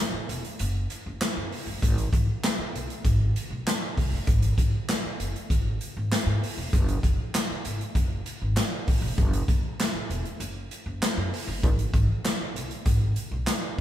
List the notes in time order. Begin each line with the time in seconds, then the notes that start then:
0.13 muted upright bass stroke
0.29 E1, closed hi-hat
0.45 closed hi-hat
0.59 F#1, closed hi-hat
0.90 closed hi-hat
1.06 F#1
1.21 snare, clap, closed hi-hat
1.37 F#2
1.52 open hi-hat
1.66 F#1
1.82 G#1, kick, closed hi-hat
1.98 closed hi-hat
2.13 G#1, kick, closed hi-hat
2.43 snare, clap, closed hi-hat
2.59 muted upright bass stroke
2.73 B1, closed hi-hat
2.90 closed hi-hat
3.04 G#1, kick, closed hi-hat
3.36 closed hi-hat
3.50 B1
3.67 snare, clap, closed hi-hat
3.97 C2, kick, open hi-hat
4.12 F#1
4.27 G#1, kick, closed hi-hat
4.42 closed hi-hat
4.58 G#1, kick, closed hi-hat
4.89 snare, clap, closed hi-hat
5.05 muted upright bass stroke
5.20 F#1, closed hi-hat
5.36 closed hi-hat
5.50 G#1, kick, closed hi-hat
5.81 closed hi-hat
5.97 G#1
6.12 snare, clap, closed hi-hat
6.26 G#2
6.43 open hi-hat
6.58 E1
6.73 F#1, kick, closed hi-hat
6.88 closed hi-hat
7.03 F#1, kick, closed hi-hat
7.34 snare, clap, closed hi-hat
7.51 muted upright bass stroke
7.65 G#1, closed hi-hat
7.81 closed hi-hat
7.95 F#1, kick, closed hi-hat
8.26 closed hi-hat
8.42 G#1
8.56 snare, clap, closed hi-hat
8.87 A1, kick, open hi-hat
9.02 E1
9.18 F#1, kick, closed hi-hat
9.33 closed hi-hat
9.48 F#1, kick, closed hi-hat
9.80 snare, clap, closed hi-hat
9.94 muted upright bass stroke
10.10 E1, closed hi-hat
10.25 closed hi-hat
10.40 F#1, closed hi-hat
10.71 closed hi-hat
10.86 F#1
11.02 snare, clap, closed hi-hat
11.17 F#2
11.34 open hi-hat
11.47 F#1
11.63 G#1, kick, closed hi-hat
11.79 closed hi-hat
11.93 G#1, kick, closed hi-hat
12.24 snare, clap, closed hi-hat
12.40 muted upright bass stroke
12.56 B1, closed hi-hat
12.71 closed hi-hat
12.85 G#1, kick, closed hi-hat
13.16 closed hi-hat
13.31 B1
13.47 snare, clap, closed hi-hat